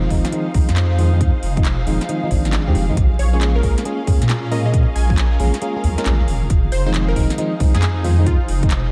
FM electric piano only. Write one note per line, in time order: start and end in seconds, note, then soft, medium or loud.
0.10 0.31 D#3 medium
0.10 0.31 F3 medium
0.10 0.31 G#3 medium
0.10 0.31 C4 medium
0.10 0.31 D#4 medium
0.32 0.47 D#3 medium
0.32 0.47 F3 medium
0.32 0.47 G#3 medium
0.32 0.47 C4 medium
0.32 0.47 D#4 loud
0.54 0.69 D#3 medium
0.54 0.69 F3 medium
0.54 0.69 G#3 medium
0.54 0.69 C4 medium
0.54 0.69 D#4 medium
0.99 1.11 D#3 medium
0.99 1.11 F3 medium
0.99 1.11 G#3 medium
0.99 1.11 C4 medium
0.99 1.11 F4 medium
1.13 1.29 D#3 medium
1.13 1.29 F3 medium
1.13 1.29 G#3 medium
1.13 1.29 C4 medium
1.13 1.29 D#4 medium
1.57 1.65 D#3 medium
1.57 1.65 F3 medium
1.57 1.65 G#3 medium
1.57 1.65 C4 medium
1.57 1.65 D#4 medium
1.87 2.01 D#3 medium
1.87 2.01 F3 medium
1.87 2.01 G#3 medium
1.87 2.01 C4 medium
1.87 2.01 D#4 medium
2.09 2.21 D#3 medium
2.09 2.21 F3 medium
2.09 2.21 G#3 medium
2.09 2.21 C4 medium
2.09 2.21 D#4 medium
2.23 2.29 D#3 medium
2.23 2.29 F3 medium
2.23 2.29 G#3 medium
2.23 2.29 C4 medium
2.23 2.29 D#4 medium
2.31 2.64 D#3 medium
2.31 2.64 F3 medium
2.31 2.64 G#3 medium
2.31 2.64 C4 medium
2.31 2.64 D4 medium
2.67 2.86 D#3 medium
2.67 2.86 F3 medium
2.67 2.86 G#3 medium
2.67 2.86 C4 medium
2.67 2.86 G4 medium
2.89 2.96 D#3 medium
2.89 2.96 F3 medium
2.89 2.96 G#3 medium
2.89 2.96 C4 medium
2.89 2.96 D#4 medium
3.33 3.61 G#3 medium
3.33 3.61 A#3 medium
3.33 3.61 C#4 medium
3.33 3.61 F4 medium
3.33 3.61 G#4 loud
3.63 3.83 G#3 medium
3.63 3.83 A#3 medium
3.63 3.83 C#4 medium
3.63 3.83 F4 medium
3.63 3.83 G#4 medium
3.85 4.00 G#3 medium
3.85 4.00 A#3 medium
3.85 4.00 C#4 medium
3.85 4.00 F4 medium
3.85 4.00 G#4 loud
4.07 4.22 G#3 medium
4.07 4.22 A#3 medium
4.07 4.22 C#4 medium
4.07 4.22 F4 medium
4.07 4.22 G#4 medium
4.52 4.64 G#3 medium
4.52 4.64 A#3 medium
4.52 4.64 C#4 medium
4.52 4.64 F4 medium
4.52 4.64 A#4 medium
4.66 4.82 G#3 medium
4.66 4.82 A#3 medium
4.66 4.82 C#4 medium
4.66 4.82 F4 medium
4.66 4.82 G#4 medium
5.10 5.18 G#3 medium
5.10 5.18 A#3 medium
5.10 5.18 C#4 medium
5.10 5.18 F4 medium
5.10 5.18 G#4 medium
5.40 5.54 G#3 medium
5.40 5.54 A#3 medium
5.40 5.54 C#4 medium
5.40 5.54 F4 medium
5.40 5.54 G#4 medium
5.62 5.74 G#3 medium
5.62 5.74 A#3 medium
5.62 5.74 C#4 medium
5.62 5.74 F4 medium
5.62 5.74 G#4 medium
5.76 5.84 G#3 medium
5.76 5.84 A#3 medium
5.76 5.84 C#4 medium
5.76 5.84 F4 medium
5.76 5.84 G#4 medium
5.98 6.14 G#3 medium
5.98 6.14 A#3 medium
5.98 6.14 C#4 medium
5.98 6.14 F4 medium
5.98 6.14 A#4 loud
6.86 7.14 D#3 medium
6.86 7.14 F3 medium
6.86 7.14 G#3 medium
6.86 7.14 C4 medium
6.86 7.14 D#4 loud
7.16 7.36 D#3 medium
7.16 7.36 F3 medium
7.16 7.36 G#3 medium
7.16 7.36 C4 medium
7.16 7.36 D#4 medium
7.38 7.53 D#3 medium
7.38 7.53 F3 medium
7.38 7.53 G#3 medium
7.38 7.53 C4 medium
7.38 7.53 D#4 loud
7.60 7.75 D#3 medium
7.60 7.75 F3 medium
7.60 7.75 G#3 medium
7.60 7.75 C4 medium
7.60 7.75 D#4 medium
8.04 8.17 D#3 medium
8.04 8.17 F3 medium
8.04 8.17 G#3 medium
8.04 8.17 C4 medium
8.04 8.17 F4 medium
8.19 8.35 D#3 medium
8.19 8.35 F3 medium
8.19 8.35 G#3 medium
8.19 8.35 C4 medium
8.19 8.35 D#4 medium
8.63 8.71 D#3 medium
8.63 8.71 F3 medium
8.63 8.71 G#3 medium
8.63 8.71 C4 medium
8.63 8.71 D#4 medium